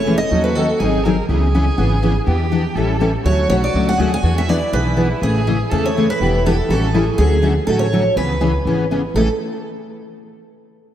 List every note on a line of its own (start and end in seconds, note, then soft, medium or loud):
0.00 0.21 E1 medium
0.00 0.26 E4 medium
0.00 0.17 C#5 medium
0.06 0.16 C#3 medium
0.06 0.17 E3 medium
0.06 0.16 A3 medium
0.06 0.17 C#4 medium
0.06 0.16 G#4 medium
0.18 0.41 D#5 medium
0.31 0.70 D#2 medium
0.31 0.49 D#3 medium
0.31 0.49 F#3 medium
0.31 0.49 C#4 medium
0.31 0.49 D#4 medium
0.31 0.80 F#4 medium
0.31 0.49 A4 medium
0.44 0.55 B4 medium
0.55 0.66 D#3 medium
0.55 0.66 F#3 medium
0.55 0.66 C#4 medium
0.55 0.66 D#4 medium
0.55 0.80 A4 medium
0.55 0.66 A4 medium
0.79 1.19 G#1 medium
0.79 0.98 D#3 medium
0.79 0.98 F#3 medium
0.79 0.98 C4 medium
0.79 0.99 D#4 medium
0.79 1.05 G#4 medium
0.79 1.15 G#4 medium
0.79 0.98 G#4 medium
1.04 1.15 D#3 medium
1.04 1.15 F#3 medium
1.04 1.15 C4 medium
1.04 1.15 D#4 medium
1.04 1.15 G#4 medium
1.04 1.29 A#4 medium
1.29 1.68 C#2 medium
1.29 1.47 C#3 medium
1.29 1.47 E3 medium
1.29 1.47 B3 medium
1.29 1.48 C#4 medium
1.29 2.23 G#4 medium
1.29 1.47 G#4 medium
1.54 1.64 C#3 medium
1.54 1.64 E3 medium
1.54 1.64 B3 medium
1.54 1.64 C#4 medium
1.54 1.64 G#4 medium
1.77 2.17 G#1 medium
1.77 1.95 C#3 medium
1.77 1.96 E3 medium
1.77 1.96 B3 medium
1.77 1.96 C#4 medium
1.77 1.96 G#4 medium
2.02 2.12 C#3 medium
2.02 2.13 E3 medium
2.02 2.13 B3 medium
2.02 2.13 C#4 medium
2.02 2.13 G#4 medium
2.26 2.66 E2 medium
2.26 2.44 E3 medium
2.26 2.45 B3 medium
2.26 2.45 D4 medium
2.26 2.77 G4 medium
2.26 2.45 G4 medium
2.52 2.62 E3 medium
2.52 2.61 B3 medium
2.52 2.62 D4 medium
2.52 2.62 G4 medium
2.75 3.15 A1 medium
2.75 2.94 E3 medium
2.75 2.94 G3 medium
2.75 2.94 C#4 medium
2.75 2.94 E4 medium
2.75 3.14 A4 medium
2.75 2.94 A4 medium
3.00 3.10 E3 medium
3.00 3.10 G3 medium
3.00 3.11 C#4 medium
3.00 3.11 E4 medium
3.00 3.11 A4 medium
3.24 3.44 D2 medium
3.24 3.43 D3 medium
3.24 3.43 F#3 medium
3.24 3.43 A3 medium
3.24 3.43 C#4 medium
3.24 3.99 F#4 medium
3.24 3.43 F#4 medium
3.24 3.48 C#5 medium
3.49 3.70 B1 medium
3.49 3.60 D3 medium
3.49 3.60 F#3 medium
3.49 3.60 A3 medium
3.49 3.60 C#4 medium
3.49 3.60 F#4 medium
3.49 3.55 C#5 medium
3.64 3.88 D5 medium
3.74 3.95 C#2 medium
3.74 3.92 D3 medium
3.74 3.92 F#3 medium
3.74 3.92 A3 medium
3.74 3.93 C#4 medium
3.74 3.93 F#4 medium
3.89 4.11 F#5 medium
3.98 4.19 D2 medium
3.98 4.09 D3 medium
3.98 4.09 F#3 medium
3.98 4.09 A3 medium
3.98 4.09 C#4 medium
3.98 4.09 F#4 loud
3.98 4.21 G#4 medium
4.14 4.38 G#5 medium
4.22 4.62 E2 medium
4.22 4.41 E3 medium
4.22 4.41 B3 medium
4.22 4.41 D4 medium
4.22 4.50 F#4 medium
4.22 4.41 G#4 medium
4.38 4.49 E5 medium
4.48 4.58 E3 medium
4.48 4.58 B3 medium
4.48 4.58 D4 medium
4.48 5.23 E4 medium
4.48 4.58 G#4 loud
4.48 4.73 D5 medium
4.72 5.12 B1 medium
4.72 4.90 E3 medium
4.72 4.91 B3 medium
4.72 4.91 D4 medium
4.72 4.91 G#4 medium
4.72 5.08 B4 medium
4.97 5.07 E3 medium
4.97 5.07 B3 medium
4.97 5.07 D4 medium
4.97 5.07 G#4 medium
5.21 5.61 A1 medium
5.21 5.40 C#3 medium
5.21 5.40 E3 medium
5.21 5.40 A3 medium
5.21 5.40 C#4 medium
5.21 5.71 G#4 medium
5.21 5.40 G#4 medium
5.21 5.58 G#4 medium
5.47 5.56 C#3 medium
5.47 5.56 E3 medium
5.47 5.56 A3 medium
5.47 5.56 C#4 medium
5.47 5.56 G#4 medium
5.70 6.10 E2 medium
5.70 5.89 C#3 medium
5.70 5.89 E3 medium
5.70 5.89 A3 medium
5.70 5.89 C#4 medium
5.70 5.89 G#4 medium
5.70 5.96 A4 medium
5.70 5.83 A4 medium
5.86 6.08 C#5 medium
5.94 6.06 C#3 medium
5.94 6.06 E3 medium
5.94 6.06 A3 medium
5.94 6.06 C#4 medium
5.94 6.68 E4 medium
5.94 6.06 G#4 medium
6.10 6.43 B4 medium
6.20 6.59 E1 medium
6.20 6.38 E3 medium
6.20 6.38 B3 medium
6.20 6.38 D4 medium
6.20 6.38 G4 medium
6.46 6.55 E3 medium
6.46 6.55 B3 medium
6.46 6.55 D4 medium
6.46 6.55 G4 medium
6.46 6.69 A4 medium
6.69 7.08 A1 medium
6.69 6.87 E3 medium
6.69 6.87 G3 medium
6.69 6.87 C#4 medium
6.69 6.87 E4 medium
6.69 6.92 F#4 medium
6.69 6.87 A4 medium
6.69 7.05 A4 medium
6.93 7.04 E3 medium
6.93 7.04 G3 medium
6.93 7.04 C#4 medium
6.93 7.04 E4 medium
6.93 7.16 G#4 medium
6.93 7.04 A4 medium
7.18 7.57 D2 medium
7.18 7.36 D3 medium
7.18 7.36 F#3 medium
7.18 7.36 A3 medium
7.18 7.37 C#4 medium
7.18 7.37 F#4 medium
7.18 7.66 G#4 medium
7.42 7.52 D3 medium
7.42 7.52 F#3 medium
7.42 7.52 A3 medium
7.42 7.52 C#4 medium
7.42 7.53 F#4 medium
7.67 8.06 A1 medium
7.67 7.85 D3 medium
7.67 7.86 F#3 medium
7.67 7.85 A3 medium
7.67 7.86 C#4 medium
7.67 7.86 F#4 medium
7.67 7.79 A4 medium
7.79 8.17 C#5 medium
7.92 8.02 D3 medium
7.92 8.02 F#3 medium
7.92 8.02 A3 medium
7.92 8.02 C#4 medium
7.92 8.02 F#4 medium
8.16 8.56 C#2 medium
8.16 8.34 C#3 medium
8.16 8.34 E3 medium
8.16 8.34 B3 medium
8.16 8.34 C#4 medium
8.16 8.34 G#4 medium
8.16 8.86 B4 medium
8.40 8.50 C#3 medium
8.40 8.51 E3 medium
8.40 8.51 B3 medium
8.40 8.51 C#4 medium
8.40 8.51 G#4 medium
8.65 9.05 G#1 medium
8.65 8.84 C#3 medium
8.65 8.84 E3 medium
8.65 8.84 B3 medium
8.65 8.84 C#4 medium
8.65 8.84 G#4 medium
8.91 9.00 C#3 medium
8.91 9.00 E3 medium
8.91 9.01 B3 medium
8.91 9.01 C#4 medium
8.91 9.01 G#4 medium
9.14 9.27 A1 medium
9.14 9.26 A2 medium
9.14 9.26 C#3 medium
9.14 9.26 E3 medium
9.14 9.26 A3 medium
9.14 9.27 C#4 medium
9.14 9.27 G#4 medium
9.14 9.28 A4 medium